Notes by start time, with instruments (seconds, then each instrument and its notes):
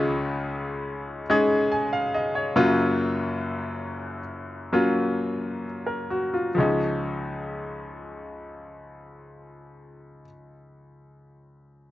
Already playing: grand piano C#2 C#3 G#3 C#4 D#4 F4, steel-string acoustic guitar D#3 F3 G#3 F4
1.30 grand piano G#3 C#4 D#4 G#4
1.72 grand piano G#5
1.93 grand piano F5
2.14 grand piano D#5
2.35 grand piano C#5
2.56 grand piano F#1 F#2 F#3 A#3 C#4 F4
4.73 grand piano F#3 A#3 C#4 F4
5.87 grand piano A#4
6.10 grand piano F#4
6.34 grand piano F4
6.55 grand piano C#2 F3 G#3 C#4
6.60 grand piano D#4